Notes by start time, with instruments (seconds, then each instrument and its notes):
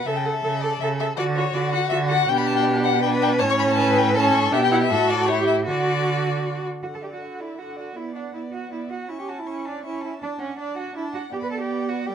0.06 cello C#3, viola A4, violin A4 E5
0.16 violin G5
0.25 viola A4, violin F#5
0.33 violin E5
0.44 cello C#3, viola A4
0.62 viola A4, violin D5
0.80 cello C#3, viola A4, violin E5
1.00 viola A4, violin E5
1.17 cello D3, violin F#4 D5, viola F#4
1.36 viola F#4, violin C#5
1.53 cello D3, viola F#4, violin D5
1.72 viola F#4, violin F#5
1.89 cello D3, viola F#4, violin E5
2.09 viola F#4, violin F#5
2.29 cello B2, viola D4, violin G4 G5
2.38 violin B5
2.47 violin A5
2.56 violin G5
2.84 violin F#5
3.01 viola D4, violin B4 G5
3.22 violin G5
3.39 cello A2, viola C#4, violin C#5 A5
3.50 violin C#6
3.59 violin B5
3.69 violin A5
3.78 violin B4
3.97 violin G5
4.15 viola C#4, violin A4 A5
4.34 violin C#6
4.52 cello B2, viola D4, violin G4 E5
4.64 violin G5
4.71 viola E4, violin F#5
4.81 violin E5
4.90 cello A2, viola F#4, violin A4
5.10 violin D5
5.28 violin E4 C#5, viola G4
5.47 violin E5
5.65 cello D3, violin F#4 D5, viola F#4
6.83 viola D3, cello F#4, violin F#5
6.93 cello A4, violin A5
7.03 cello G4, violin D5 G5
7.12 cello F#4, violin F#5
7.21 viola D3, violin F#5
7.40 cello E4, violin D5 E5
7.58 viola D3, cello F#4, violin F#5
7.76 cello F#4, violin D5 F#5
7.95 viola B3, cello E4, violin D5 E5
8.15 cello D4, violin D5 F#5
8.34 viola B3, cello E4, violin D5 E5
8.52 cello F#4, violin F#5
8.71 viola B3, cello E4, violin D5 E5
8.90 cello F#4, violin F#5
9.07 viola C#4, cello E4, violin E5 C#6
9.19 cello G4, violin G5
9.28 cello F#4, violin F#5 A5
9.39 cello E4, violin E5
9.47 viola C#4, violin C#6
9.65 cello D4, violin D5 A5
9.83 viola C#4, cello E4, violin E5 C#6
10.01 cello E4, violin E5 A5
10.20 viola D4, cello D4, violin D5 A5
10.39 cello C#4, violin C#5 F#5
10.58 cello D4, viola D4, violin D5 A5
10.76 cello F#4, violin F#5
10.96 viola D4, cello E4, violin E5 A5
11.13 cello F#4, violin F#5
11.32 viola B3, cello G4, violin D5 G5
11.41 cello B4, violin B5
11.51 cello A4, violin A5
11.60 cello G4, violin G5
11.88 cello F#4, violin F#5
12.06 viola G3, cello G4, violin D5 G5